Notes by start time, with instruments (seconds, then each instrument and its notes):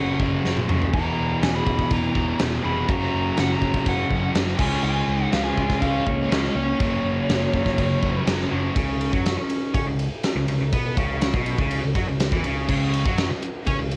Already playing: picked electric bass F#1, distorted electric guitar F#2 C#3 F#3, lead electric guitar C#4 F#5
0.19 picked electric bass F#1, distorted electric guitar F#2 C#3 F#3, kick
0.43 picked electric bass F#1, distorted electric guitar F#2 C#3 F#3, snare
0.57 high tom
0.68 picked electric bass F1, distorted electric guitar C#3 F#3, mid tom
0.73 distorted electric guitar F#2
0.82 floor tom
0.93 picked electric bass E1, distorted electric guitar E2 B2 E3, lead electric guitar E4 A#5, kick, crash
1.18 picked electric bass E1
1.42 picked electric bass E1, lead electric guitar E4 G#5, snare, crash
1.54 lead electric guitar G#4 B5
1.66 picked electric bass E1, kick
1.79 kick
1.90 picked electric bass E1, lead electric guitar E4 A#5, kick, crash
2.15 picked electric bass E1, distorted electric guitar E2 B2 E3, kick
2.39 picked electric bass E1, distorted electric guitar E2 B2 E3, snare, crash
2.63 picked electric bass F1, distorted electric guitar B2 E3, lead electric guitar G#4 B5
2.67 distorted electric guitar E2
2.88 picked electric bass F#1, distorted electric guitar F#2 C#3 F#3, lead electric guitar F#4 A#5, kick, crash
2.92 distorted electric guitar F#3
3.14 picked electric bass F#1
3.37 picked electric bass F#1, lead electric guitar C#4 F#5, snare, crash
3.51 lead electric guitar F#4 A#5
3.62 picked electric bass F#1, kick
3.74 kick
3.86 picked electric bass F#1, lead electric guitar C#4 F#5, kick, crash
4.09 picked electric bass F#1, distorted electric guitar F#2 C#3 F#3, kick
4.33 picked electric bass F#1, distorted electric guitar F#2 C#3 F#3, snare, crash
4.48 snare
4.58 picked electric bass C#2, distorted electric guitar C#3 G#3 C#4, lead electric guitar F4 G#5, kick, crash
4.62 distorted electric guitar C#4
4.83 picked electric bass C#2, lead electric guitar F4 G#5, crash
5.08 picked electric bass C#2
5.32 picked electric bass C#2, lead electric guitar C#4 F5, snare, crash
5.43 lead electric guitar F4 G#5
5.57 picked electric bass C#2, kick
5.70 kick, snare
5.81 picked electric bass C#2, distorted electric guitar C#3 G#3 C#4, lead electric guitar C#4 F5, kick, crash
6.06 picked electric bass C#2, distorted electric guitar C#3 G#3 C#4, lead electric guitar A#3 C#5, kick
6.30 picked electric bass C#2, distorted electric guitar C#3 G#3 C#4, lead electric guitar G#3 D#5, snare, crash
6.44 snare
6.55 picked electric bass C#2, lead electric guitar A#3 C#5
6.79 picked electric bass F#1, distorted electric guitar F#2 C#3 F#3, kick, crash
7.03 picked electric bass F#1
7.29 picked electric bass F#1, snare, crash
7.54 picked electric bass F#1, kick
7.66 kick, snare
7.78 picked electric bass F#1, kick, crash
8.01 picked electric bass F#1, distorted electric guitar F#2 C#3 F#3, kick
8.26 picked electric bass F#1, distorted electric guitar F#2 C#3 F#3, snare, crash
8.40 snare
8.51 picked electric bass F#1, distorted electric guitar C#3 F#3
8.55 distorted electric guitar F#2
8.76 picked electric bass C#2, distorted electric guitar C#3, kick, ride
9.01 ride
9.13 picked electric bass F#2, distorted electric guitar F#3, kick
9.26 snare, ride
9.37 muted picked electric bass stroke, muted distorted electric guitar stroke
9.50 ride
9.74 picked electric bass C#3, distorted electric guitar C#4, kick, ride
9.86 picked electric bass C#2, distorted electric guitar C#3
9.99 ride
10.23 snare, ride
10.35 picked electric bass C#2, distorted electric guitar C#3
10.48 picked electric bass C#2, distorted electric guitar C#3, ride
10.60 picked electric bass C#2, distorted electric guitar C#3
10.73 picked electric bass B2, distorted electric guitar B3, kick, ride
10.97 picked electric bass C#2, distorted electric guitar C#3, kick, ride
11.21 snare, ride
11.34 picked electric bass B1, distorted electric guitar B2, kick
11.46 ride
11.58 picked electric bass C#2, distorted electric guitar C#3, kick
11.71 ride
11.84 picked electric bass C#2, distorted electric guitar C#3
11.95 picked electric bass F#2, distorted electric guitar F#3, kick, ride
12.08 picked electric bass C#2, distorted electric guitar C#3
12.20 snare, ride
12.32 picked electric bass E2, distorted electric guitar E3, kick
12.44 picked electric bass C#2, distorted electric guitar C#3, ride
12.68 picked electric bass C#2, distorted electric guitar C#3, kick, crash
12.93 ride
13.05 picked electric bass F#2, distorted electric guitar F#3, kick
13.18 snare, ride
13.30 muted distorted electric guitar stroke, muted picked electric bass stroke
13.42 ride
13.67 picked electric bass C#3, distorted electric guitar C#4, kick, ride
13.79 picked electric bass C#2, distorted electric guitar C#3
13.91 ride